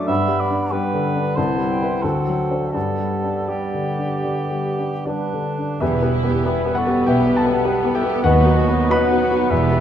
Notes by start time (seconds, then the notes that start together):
Already playing: F#2 F#3 A3 D4
0.08 G2 B3 D4 E5 B5
0.28 G3
0.40 D5
0.50 D4
0.72 G3 B3 D4 B4 G5
0.94 D3
1.16 D4
1.37 C2 B3 E4 C5 A5
1.58 G3
1.70 G5
1.82 E4 B4
2.01 D2 C4 F#4 A4 F#5
2.27 F#3
2.51 D4 C5
2.72 G2 B3 G4 A4 D5
2.99 G3
3.24 D4
3.48 G3 B3 G4
3.74 D3
3.98 D4
4.24 D3
4.51 G3
4.79 D4
5.06 G3 D4 G4 B4 D5
5.33 D3
5.58 D4
5.80 E1 E2 B2 G3 B3 E4 G4 B4 E5
5.97 B3
6.02 B3 G4 B4
6.13 E4
6.24 B3 G4 B4
6.29 G4
6.44 B3 E4 G4 B4
6.60 B3
6.65 B3 G4 B4
6.75 G3 F#4 A4 D5 F#5
6.87 B3 G4 B4
7.05 B1 B2 E4 G4 B4 E5 G5
7.20 G4
7.25 B3 G4 B4
7.35 E4 A4 F#5 A5
7.45 B3 G4 B4
7.51 B3
7.65 G3 B3 G4 B4
7.78 B3
7.84 B3 G4 B4
7.93 E4 G4 A4 E5 G5
8.03 B3 G4 B4
8.08 G4
8.23 D#2 F#3 B3 F#4 B4 D#5 F#5
8.40 D#4
8.46 B3 F#4 B4
8.56 F#4 D#5
8.68 B3 F#4 B4
8.72 D#4
8.89 B3 F#4 B4 D#5 F#5 B5
8.93 B4
9.06 D#4
9.11 B3 F#4 B4
9.22 F#4
9.31 B3 F#4 B4
9.37 D#4
9.50 E1 E2 G3 E4 G4 E5
9.66 B3
9.71 G4 B4